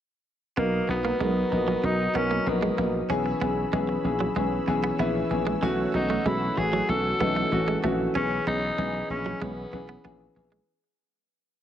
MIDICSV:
0, 0, Header, 1, 7, 480
1, 0, Start_track
1, 0, Key_signature, 5, "major"
1, 0, Tempo, 631579
1, 435, Time_signature, 4, 2, 24, 8
1, 8832, End_track
2, 0, Start_track
2, 0, Title_t, "Analog synth pad"
2, 0, Program_c, 0, 89
2, 436, Note_on_c, 0, 70, 68
2, 436, Note_on_c, 0, 82, 68
2, 436, Note_on_c, 0, 87, 83
2, 437, Note_on_c, 0, 66, 77
2, 2336, Note_off_c, 0, 66, 0
2, 2336, Note_off_c, 0, 70, 0
2, 2336, Note_off_c, 0, 82, 0
2, 2336, Note_off_c, 0, 87, 0
2, 2350, Note_on_c, 0, 68, 77
2, 2350, Note_on_c, 0, 73, 70
2, 2350, Note_on_c, 0, 88, 85
2, 2352, Note_on_c, 0, 83, 72
2, 4253, Note_off_c, 0, 68, 0
2, 4254, Note_off_c, 0, 83, 0
2, 4274, Note_on_c, 0, 66, 73
2, 4274, Note_on_c, 0, 78, 68
2, 6162, Note_off_c, 0, 73, 0
2, 6175, Note_off_c, 0, 66, 0
2, 6175, Note_off_c, 0, 78, 0
2, 6192, Note_on_c, 0, 83, 68
2, 6193, Note_on_c, 0, 68, 72
2, 6193, Note_on_c, 0, 73, 70
2, 8082, Note_off_c, 0, 88, 0
2, 8094, Note_off_c, 0, 83, 0
2, 8095, Note_off_c, 0, 68, 0
2, 8095, Note_off_c, 0, 73, 0
2, 8832, End_track
3, 0, Start_track
3, 0, Title_t, "Tenor saxophone"
3, 0, Program_c, 1, 66
3, 443, Note_on_c, 1, 58, 77
3, 662, Note_off_c, 1, 58, 0
3, 683, Note_on_c, 1, 59, 86
3, 1406, Note_on_c, 1, 63, 94
3, 1417, Note_off_c, 1, 59, 0
3, 1645, Note_on_c, 1, 61, 93
3, 1657, Note_off_c, 1, 63, 0
3, 1886, Note_on_c, 1, 59, 77
3, 1897, Note_off_c, 1, 61, 0
3, 2240, Note_off_c, 1, 59, 0
3, 4524, Note_on_c, 1, 63, 82
3, 4761, Note_on_c, 1, 64, 87
3, 4773, Note_off_c, 1, 63, 0
3, 5000, Note_on_c, 1, 68, 88
3, 5012, Note_off_c, 1, 64, 0
3, 5241, Note_on_c, 1, 69, 96
3, 5252, Note_off_c, 1, 68, 0
3, 5958, Note_off_c, 1, 69, 0
3, 6201, Note_on_c, 1, 61, 96
3, 6421, Note_off_c, 1, 61, 0
3, 6441, Note_on_c, 1, 63, 107
3, 6887, Note_off_c, 1, 63, 0
3, 6921, Note_on_c, 1, 61, 84
3, 7141, Note_off_c, 1, 61, 0
3, 7163, Note_on_c, 1, 59, 81
3, 7848, Note_off_c, 1, 59, 0
3, 8832, End_track
4, 0, Start_track
4, 0, Title_t, "Grand piano"
4, 0, Program_c, 2, 0
4, 431, Note_on_c, 2, 54, 88
4, 433, Note_on_c, 2, 59, 80
4, 437, Note_on_c, 2, 63, 81
4, 440, Note_on_c, 2, 70, 92
4, 569, Control_c, 2, 64, 127
4, 588, Note_off_c, 2, 54, 0
4, 590, Note_off_c, 2, 59, 0
4, 592, Note_off_c, 2, 63, 0
4, 593, Note_off_c, 2, 70, 0
4, 672, Note_on_c, 2, 54, 70
4, 675, Note_on_c, 2, 59, 58
4, 677, Note_on_c, 2, 63, 61
4, 680, Note_on_c, 2, 70, 72
4, 829, Note_off_c, 2, 54, 0
4, 830, Note_off_c, 2, 59, 0
4, 832, Note_off_c, 2, 63, 0
4, 833, Note_off_c, 2, 70, 0
4, 911, Note_on_c, 2, 54, 69
4, 914, Note_on_c, 2, 59, 65
4, 917, Note_on_c, 2, 63, 65
4, 920, Note_on_c, 2, 70, 74
4, 1068, Note_off_c, 2, 54, 0
4, 1070, Note_off_c, 2, 59, 0
4, 1072, Note_off_c, 2, 63, 0
4, 1073, Note_off_c, 2, 70, 0
4, 1151, Note_on_c, 2, 54, 69
4, 1154, Note_on_c, 2, 59, 62
4, 1156, Note_on_c, 2, 63, 61
4, 1159, Note_on_c, 2, 70, 74
4, 1309, Note_off_c, 2, 54, 0
4, 1310, Note_off_c, 2, 59, 0
4, 1311, Note_off_c, 2, 63, 0
4, 1313, Note_off_c, 2, 70, 0
4, 1390, Note_on_c, 2, 54, 63
4, 1393, Note_on_c, 2, 59, 61
4, 1395, Note_on_c, 2, 63, 58
4, 1398, Note_on_c, 2, 70, 66
4, 1548, Note_off_c, 2, 54, 0
4, 1549, Note_off_c, 2, 59, 0
4, 1551, Note_off_c, 2, 63, 0
4, 1552, Note_off_c, 2, 70, 0
4, 1628, Note_on_c, 2, 54, 87
4, 1632, Note_on_c, 2, 59, 80
4, 1635, Note_on_c, 2, 63, 81
4, 1637, Note_on_c, 2, 70, 94
4, 1787, Note_off_c, 2, 54, 0
4, 1789, Note_off_c, 2, 59, 0
4, 1791, Note_off_c, 2, 63, 0
4, 1792, Note_off_c, 2, 70, 0
4, 1870, Note_on_c, 2, 54, 90
4, 1874, Note_on_c, 2, 59, 81
4, 1876, Note_on_c, 2, 63, 79
4, 1879, Note_on_c, 2, 70, 93
4, 2028, Note_off_c, 2, 54, 0
4, 2030, Note_off_c, 2, 59, 0
4, 2031, Note_off_c, 2, 63, 0
4, 2033, Note_off_c, 2, 70, 0
4, 2110, Note_on_c, 2, 54, 69
4, 2113, Note_on_c, 2, 59, 62
4, 2117, Note_on_c, 2, 63, 64
4, 2120, Note_on_c, 2, 70, 77
4, 2268, Note_off_c, 2, 54, 0
4, 2270, Note_off_c, 2, 59, 0
4, 2271, Note_off_c, 2, 63, 0
4, 2273, Note_off_c, 2, 70, 0
4, 2350, Note_on_c, 2, 52, 100
4, 2353, Note_on_c, 2, 59, 96
4, 2356, Note_on_c, 2, 61, 97
4, 2359, Note_on_c, 2, 68, 117
4, 2364, Control_c, 2, 64, 0
4, 2482, Control_c, 2, 64, 127
4, 2508, Note_off_c, 2, 52, 0
4, 2510, Note_off_c, 2, 59, 0
4, 2511, Note_off_c, 2, 61, 0
4, 2513, Note_off_c, 2, 68, 0
4, 2592, Note_on_c, 2, 52, 84
4, 2595, Note_on_c, 2, 59, 76
4, 2596, Note_on_c, 2, 61, 74
4, 2601, Note_on_c, 2, 68, 89
4, 2749, Note_off_c, 2, 52, 0
4, 2750, Note_off_c, 2, 59, 0
4, 2751, Note_off_c, 2, 61, 0
4, 2753, Note_off_c, 2, 68, 0
4, 2831, Note_on_c, 2, 52, 85
4, 2833, Note_on_c, 2, 59, 75
4, 2836, Note_on_c, 2, 61, 75
4, 2839, Note_on_c, 2, 68, 95
4, 2988, Note_off_c, 2, 52, 0
4, 2990, Note_off_c, 2, 59, 0
4, 2991, Note_off_c, 2, 61, 0
4, 2993, Note_off_c, 2, 68, 0
4, 3069, Note_on_c, 2, 52, 78
4, 3072, Note_on_c, 2, 59, 74
4, 3076, Note_on_c, 2, 61, 76
4, 3078, Note_on_c, 2, 68, 93
4, 3228, Note_off_c, 2, 52, 0
4, 3229, Note_off_c, 2, 59, 0
4, 3231, Note_off_c, 2, 61, 0
4, 3232, Note_off_c, 2, 68, 0
4, 3311, Note_on_c, 2, 52, 74
4, 3314, Note_on_c, 2, 59, 71
4, 3317, Note_on_c, 2, 61, 73
4, 3320, Note_on_c, 2, 68, 89
4, 3468, Note_off_c, 2, 52, 0
4, 3470, Note_off_c, 2, 59, 0
4, 3471, Note_off_c, 2, 61, 0
4, 3473, Note_off_c, 2, 68, 0
4, 3551, Note_on_c, 2, 52, 104
4, 3554, Note_on_c, 2, 59, 99
4, 3556, Note_on_c, 2, 61, 96
4, 3560, Note_on_c, 2, 68, 111
4, 3708, Note_off_c, 2, 52, 0
4, 3710, Note_off_c, 2, 59, 0
4, 3711, Note_off_c, 2, 61, 0
4, 3713, Note_off_c, 2, 68, 0
4, 3791, Note_on_c, 2, 52, 102
4, 3794, Note_on_c, 2, 59, 91
4, 3797, Note_on_c, 2, 61, 98
4, 3799, Note_on_c, 2, 64, 112
4, 3949, Note_off_c, 2, 52, 0
4, 3950, Note_off_c, 2, 59, 0
4, 3951, Note_off_c, 2, 61, 0
4, 3952, Note_off_c, 2, 64, 0
4, 4031, Note_on_c, 2, 52, 82
4, 4034, Note_on_c, 2, 59, 80
4, 4037, Note_on_c, 2, 61, 74
4, 4040, Note_on_c, 2, 68, 92
4, 4189, Note_off_c, 2, 52, 0
4, 4190, Note_off_c, 2, 59, 0
4, 4191, Note_off_c, 2, 61, 0
4, 4193, Note_off_c, 2, 68, 0
4, 4270, Note_on_c, 2, 52, 105
4, 4273, Note_on_c, 2, 57, 102
4, 4276, Note_on_c, 2, 61, 98
4, 4279, Note_on_c, 2, 66, 120
4, 4284, Control_c, 2, 64, 0
4, 4397, Control_c, 2, 64, 127
4, 4428, Note_off_c, 2, 52, 0
4, 4430, Note_off_c, 2, 57, 0
4, 4431, Note_off_c, 2, 61, 0
4, 4433, Note_off_c, 2, 66, 0
4, 4511, Note_on_c, 2, 52, 70
4, 4514, Note_on_c, 2, 57, 64
4, 4517, Note_on_c, 2, 61, 65
4, 4520, Note_on_c, 2, 66, 83
4, 4669, Note_off_c, 2, 52, 0
4, 4670, Note_off_c, 2, 57, 0
4, 4671, Note_off_c, 2, 61, 0
4, 4673, Note_off_c, 2, 66, 0
4, 4750, Note_on_c, 2, 52, 73
4, 4754, Note_on_c, 2, 57, 68
4, 4756, Note_on_c, 2, 61, 65
4, 4759, Note_on_c, 2, 66, 78
4, 4908, Note_off_c, 2, 52, 0
4, 4910, Note_off_c, 2, 57, 0
4, 4911, Note_off_c, 2, 61, 0
4, 4913, Note_off_c, 2, 66, 0
4, 4993, Note_on_c, 2, 52, 71
4, 4995, Note_on_c, 2, 57, 63
4, 4999, Note_on_c, 2, 61, 66
4, 5001, Note_on_c, 2, 66, 77
4, 5149, Note_off_c, 2, 52, 0
4, 5151, Note_off_c, 2, 57, 0
4, 5152, Note_off_c, 2, 61, 0
4, 5154, Note_off_c, 2, 66, 0
4, 5231, Note_on_c, 2, 52, 64
4, 5235, Note_on_c, 2, 57, 60
4, 5237, Note_on_c, 2, 61, 61
4, 5240, Note_on_c, 2, 66, 74
4, 5389, Note_off_c, 2, 52, 0
4, 5391, Note_off_c, 2, 57, 0
4, 5392, Note_off_c, 2, 61, 0
4, 5393, Note_off_c, 2, 66, 0
4, 5471, Note_on_c, 2, 52, 93
4, 5475, Note_on_c, 2, 57, 87
4, 5478, Note_on_c, 2, 61, 83
4, 5480, Note_on_c, 2, 63, 96
4, 5629, Note_off_c, 2, 52, 0
4, 5630, Note_off_c, 2, 57, 0
4, 5632, Note_off_c, 2, 61, 0
4, 5633, Note_off_c, 2, 63, 0
4, 5712, Note_on_c, 2, 52, 93
4, 5714, Note_on_c, 2, 57, 76
4, 5718, Note_on_c, 2, 61, 82
4, 5721, Note_on_c, 2, 66, 97
4, 5869, Note_off_c, 2, 52, 0
4, 5870, Note_off_c, 2, 57, 0
4, 5872, Note_off_c, 2, 61, 0
4, 5874, Note_off_c, 2, 66, 0
4, 5952, Note_on_c, 2, 52, 86
4, 5955, Note_on_c, 2, 57, 80
4, 5957, Note_on_c, 2, 61, 80
4, 5962, Note_on_c, 2, 66, 94
4, 6109, Note_off_c, 2, 52, 0
4, 6110, Note_off_c, 2, 57, 0
4, 6111, Note_off_c, 2, 61, 0
4, 6114, Note_off_c, 2, 66, 0
4, 6193, Note_on_c, 2, 52, 89
4, 6195, Note_on_c, 2, 59, 83
4, 6199, Note_on_c, 2, 61, 82
4, 6201, Note_on_c, 2, 68, 97
4, 6204, Control_c, 2, 64, 0
4, 6345, Control_c, 2, 64, 127
4, 6350, Note_off_c, 2, 52, 0
4, 6351, Note_off_c, 2, 59, 0
4, 6353, Note_off_c, 2, 61, 0
4, 6354, Note_off_c, 2, 68, 0
4, 6433, Note_on_c, 2, 52, 66
4, 6434, Note_on_c, 2, 59, 65
4, 6437, Note_on_c, 2, 61, 64
4, 6441, Note_on_c, 2, 68, 77
4, 6589, Note_off_c, 2, 52, 0
4, 6590, Note_off_c, 2, 59, 0
4, 6592, Note_off_c, 2, 61, 0
4, 6594, Note_off_c, 2, 68, 0
4, 6671, Note_on_c, 2, 52, 74
4, 6674, Note_on_c, 2, 59, 66
4, 6677, Note_on_c, 2, 61, 66
4, 6680, Note_on_c, 2, 68, 76
4, 6829, Note_off_c, 2, 52, 0
4, 6830, Note_off_c, 2, 59, 0
4, 6832, Note_off_c, 2, 61, 0
4, 6833, Note_off_c, 2, 68, 0
4, 6910, Note_on_c, 2, 52, 66
4, 6913, Note_on_c, 2, 59, 64
4, 6916, Note_on_c, 2, 61, 64
4, 6919, Note_on_c, 2, 68, 76
4, 7068, Note_off_c, 2, 52, 0
4, 7070, Note_off_c, 2, 59, 0
4, 7071, Note_off_c, 2, 61, 0
4, 7072, Note_off_c, 2, 68, 0
4, 7151, Note_on_c, 2, 52, 62
4, 7154, Note_on_c, 2, 59, 60
4, 7156, Note_on_c, 2, 61, 61
4, 7159, Note_on_c, 2, 68, 68
4, 7309, Note_off_c, 2, 52, 0
4, 7310, Note_off_c, 2, 59, 0
4, 7311, Note_off_c, 2, 61, 0
4, 7313, Note_off_c, 2, 68, 0
4, 7390, Note_on_c, 2, 52, 90
4, 7393, Note_on_c, 2, 59, 82
4, 7397, Note_on_c, 2, 61, 79
4, 7399, Note_on_c, 2, 68, 93
4, 7548, Note_off_c, 2, 52, 0
4, 7549, Note_off_c, 2, 59, 0
4, 7551, Note_off_c, 2, 61, 0
4, 7553, Note_off_c, 2, 68, 0
4, 7630, Note_on_c, 2, 52, 83
4, 7632, Note_on_c, 2, 59, 81
4, 7635, Note_on_c, 2, 61, 77
4, 7640, Note_on_c, 2, 68, 95
4, 7788, Note_off_c, 2, 52, 0
4, 7789, Note_off_c, 2, 59, 0
4, 7791, Note_off_c, 2, 61, 0
4, 7793, Note_off_c, 2, 68, 0
4, 7872, Note_on_c, 2, 52, 79
4, 7875, Note_on_c, 2, 59, 73
4, 7878, Note_on_c, 2, 61, 70
4, 7882, Note_on_c, 2, 68, 88
4, 8029, Note_off_c, 2, 52, 0
4, 8031, Note_off_c, 2, 59, 0
4, 8032, Note_off_c, 2, 61, 0
4, 8034, Note_off_c, 2, 68, 0
4, 8123, Control_c, 2, 64, 0
4, 8832, End_track
5, 0, Start_track
5, 0, Title_t, "Clean electric guitar"
5, 0, Program_c, 3, 27
5, 435, Note_on_c, 3, 59, 77
5, 517, Note_off_c, 3, 59, 0
5, 795, Note_on_c, 3, 58, 65
5, 877, Note_off_c, 3, 58, 0
5, 916, Note_on_c, 3, 56, 69
5, 997, Note_off_c, 3, 56, 0
5, 1275, Note_on_c, 3, 54, 63
5, 1357, Note_off_c, 3, 54, 0
5, 1634, Note_on_c, 3, 59, 69
5, 1717, Note_off_c, 3, 59, 0
5, 1754, Note_on_c, 3, 58, 66
5, 1836, Note_off_c, 3, 58, 0
5, 1995, Note_on_c, 3, 56, 70
5, 2077, Note_off_c, 3, 56, 0
5, 2115, Note_on_c, 3, 58, 76
5, 2197, Note_off_c, 3, 58, 0
5, 2354, Note_on_c, 3, 61, 75
5, 2437, Note_off_c, 3, 61, 0
5, 2595, Note_on_c, 3, 59, 70
5, 2677, Note_off_c, 3, 59, 0
5, 2836, Note_on_c, 3, 56, 71
5, 2917, Note_off_c, 3, 56, 0
5, 3195, Note_on_c, 3, 54, 71
5, 3277, Note_off_c, 3, 54, 0
5, 3315, Note_on_c, 3, 56, 81
5, 3397, Note_off_c, 3, 56, 0
5, 3676, Note_on_c, 3, 59, 72
5, 3757, Note_off_c, 3, 59, 0
5, 3795, Note_on_c, 3, 59, 72
5, 3877, Note_off_c, 3, 59, 0
5, 4154, Note_on_c, 3, 56, 75
5, 4237, Note_off_c, 3, 56, 0
5, 4275, Note_on_c, 3, 54, 80
5, 4357, Note_off_c, 3, 54, 0
5, 4636, Note_on_c, 3, 57, 67
5, 4717, Note_off_c, 3, 57, 0
5, 4756, Note_on_c, 3, 56, 73
5, 4838, Note_off_c, 3, 56, 0
5, 5116, Note_on_c, 3, 54, 69
5, 5198, Note_off_c, 3, 54, 0
5, 5476, Note_on_c, 3, 59, 71
5, 5557, Note_off_c, 3, 59, 0
5, 5596, Note_on_c, 3, 57, 66
5, 5678, Note_off_c, 3, 57, 0
5, 5835, Note_on_c, 3, 56, 69
5, 5917, Note_off_c, 3, 56, 0
5, 5956, Note_on_c, 3, 57, 77
5, 6038, Note_off_c, 3, 57, 0
5, 6196, Note_on_c, 3, 61, 78
5, 6277, Note_off_c, 3, 61, 0
5, 6437, Note_on_c, 3, 59, 68
5, 6518, Note_off_c, 3, 59, 0
5, 6676, Note_on_c, 3, 56, 75
5, 6758, Note_off_c, 3, 56, 0
5, 7037, Note_on_c, 3, 54, 72
5, 7118, Note_off_c, 3, 54, 0
5, 7156, Note_on_c, 3, 56, 82
5, 7238, Note_off_c, 3, 56, 0
5, 7515, Note_on_c, 3, 59, 68
5, 7597, Note_off_c, 3, 59, 0
5, 7635, Note_on_c, 3, 59, 68
5, 7717, Note_off_c, 3, 59, 0
5, 7994, Note_on_c, 3, 56, 74
5, 8077, Note_off_c, 3, 56, 0
5, 8832, End_track
6, 0, Start_track
6, 0, Title_t, "Slap bass"
6, 0, Program_c, 4, 36
6, 435, Note_on_c, 4, 35, 88
6, 608, Note_off_c, 4, 35, 0
6, 674, Note_on_c, 4, 35, 82
6, 847, Note_off_c, 4, 35, 0
6, 915, Note_on_c, 4, 35, 84
6, 1088, Note_off_c, 4, 35, 0
6, 1156, Note_on_c, 4, 34, 77
6, 1328, Note_off_c, 4, 34, 0
6, 1394, Note_on_c, 4, 35, 99
6, 1567, Note_off_c, 4, 35, 0
6, 1634, Note_on_c, 4, 35, 90
6, 1807, Note_off_c, 4, 35, 0
6, 1874, Note_on_c, 4, 34, 84
6, 2047, Note_off_c, 4, 34, 0
6, 2115, Note_on_c, 4, 34, 83
6, 2288, Note_off_c, 4, 34, 0
6, 2354, Note_on_c, 4, 35, 85
6, 2527, Note_off_c, 4, 35, 0
6, 2594, Note_on_c, 4, 35, 94
6, 2767, Note_off_c, 4, 35, 0
6, 2834, Note_on_c, 4, 35, 93
6, 3007, Note_off_c, 4, 35, 0
6, 3073, Note_on_c, 4, 34, 75
6, 3246, Note_off_c, 4, 34, 0
6, 3314, Note_on_c, 4, 35, 94
6, 3487, Note_off_c, 4, 35, 0
6, 3554, Note_on_c, 4, 35, 87
6, 3727, Note_off_c, 4, 35, 0
6, 3793, Note_on_c, 4, 34, 88
6, 3967, Note_off_c, 4, 34, 0
6, 4033, Note_on_c, 4, 34, 85
6, 4206, Note_off_c, 4, 34, 0
6, 4274, Note_on_c, 4, 35, 92
6, 4447, Note_off_c, 4, 35, 0
6, 4515, Note_on_c, 4, 35, 87
6, 4688, Note_off_c, 4, 35, 0
6, 4754, Note_on_c, 4, 35, 98
6, 4927, Note_off_c, 4, 35, 0
6, 4995, Note_on_c, 4, 33, 79
6, 5168, Note_off_c, 4, 33, 0
6, 5235, Note_on_c, 4, 35, 94
6, 5408, Note_off_c, 4, 35, 0
6, 5476, Note_on_c, 4, 35, 87
6, 5648, Note_off_c, 4, 35, 0
6, 5715, Note_on_c, 4, 33, 86
6, 5888, Note_off_c, 4, 33, 0
6, 5956, Note_on_c, 4, 34, 80
6, 6129, Note_off_c, 4, 34, 0
6, 6196, Note_on_c, 4, 35, 86
6, 6368, Note_off_c, 4, 35, 0
6, 6436, Note_on_c, 4, 35, 95
6, 6608, Note_off_c, 4, 35, 0
6, 6675, Note_on_c, 4, 35, 86
6, 6848, Note_off_c, 4, 35, 0
6, 6915, Note_on_c, 4, 34, 80
6, 7088, Note_off_c, 4, 34, 0
6, 7155, Note_on_c, 4, 35, 94
6, 7328, Note_off_c, 4, 35, 0
6, 7395, Note_on_c, 4, 35, 82
6, 7567, Note_off_c, 4, 35, 0
6, 7637, Note_on_c, 4, 34, 86
6, 7809, Note_off_c, 4, 34, 0
6, 7875, Note_on_c, 4, 34, 85
6, 8048, Note_off_c, 4, 34, 0
6, 8832, End_track
7, 0, Start_track
7, 0, Title_t, "Muted clean electric guitar strokes"
7, 675, Note_on_c, 9, 29, 42
7, 751, Note_off_c, 9, 29, 0
7, 1155, Note_on_c, 9, 29, 39
7, 1231, Note_off_c, 9, 29, 0
7, 1396, Note_on_c, 9, 29, 40
7, 1472, Note_off_c, 9, 29, 0
7, 1874, Note_on_c, 9, 29, 40
7, 1950, Note_off_c, 9, 29, 0
7, 2475, Note_on_c, 9, 29, 40
7, 2551, Note_off_c, 9, 29, 0
7, 2955, Note_on_c, 9, 29, 44
7, 3031, Note_off_c, 9, 29, 0
7, 3555, Note_on_c, 9, 29, 42
7, 3631, Note_off_c, 9, 29, 0
7, 4035, Note_on_c, 9, 29, 41
7, 4111, Note_off_c, 9, 29, 0
7, 4516, Note_on_c, 9, 29, 44
7, 4592, Note_off_c, 9, 29, 0
7, 4997, Note_on_c, 9, 29, 45
7, 5073, Note_off_c, 9, 29, 0
7, 5236, Note_on_c, 9, 29, 42
7, 5312, Note_off_c, 9, 29, 0
7, 5716, Note_on_c, 9, 29, 43
7, 5792, Note_off_c, 9, 29, 0
7, 6317, Note_on_c, 9, 29, 40
7, 6393, Note_off_c, 9, 29, 0
7, 6795, Note_on_c, 9, 29, 43
7, 6871, Note_off_c, 9, 29, 0
7, 7396, Note_on_c, 9, 29, 42
7, 7472, Note_off_c, 9, 29, 0
7, 7876, Note_on_c, 9, 29, 39
7, 7952, Note_off_c, 9, 29, 0
7, 8832, End_track
0, 0, End_of_file